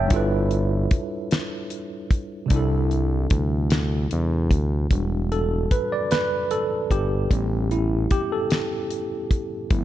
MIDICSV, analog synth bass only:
0, 0, Header, 1, 2, 480
1, 0, Start_track
1, 0, Key_signature, 1, "minor"
1, 0, Tempo, 800000
1, 64, Time_signature, 6, 3, 24, 8
1, 5906, End_track
2, 0, Start_track
2, 0, Title_t, "Analog synth bass"
2, 0, Program_c, 0, 38
2, 70, Note_on_c, 0, 31, 113
2, 523, Note_off_c, 0, 31, 0
2, 552, Note_on_c, 0, 36, 51
2, 598, Note_off_c, 0, 36, 0
2, 1509, Note_on_c, 0, 36, 117
2, 1962, Note_off_c, 0, 36, 0
2, 1990, Note_on_c, 0, 38, 88
2, 2443, Note_off_c, 0, 38, 0
2, 2475, Note_on_c, 0, 40, 101
2, 2708, Note_on_c, 0, 38, 92
2, 2717, Note_off_c, 0, 40, 0
2, 2922, Note_off_c, 0, 38, 0
2, 2949, Note_on_c, 0, 28, 106
2, 3402, Note_off_c, 0, 28, 0
2, 3431, Note_on_c, 0, 31, 43
2, 3478, Note_off_c, 0, 31, 0
2, 4147, Note_on_c, 0, 31, 74
2, 4362, Note_off_c, 0, 31, 0
2, 4389, Note_on_c, 0, 33, 105
2, 4842, Note_off_c, 0, 33, 0
2, 4872, Note_on_c, 0, 33, 42
2, 4918, Note_off_c, 0, 33, 0
2, 5830, Note_on_c, 0, 31, 111
2, 5906, Note_off_c, 0, 31, 0
2, 5906, End_track
0, 0, End_of_file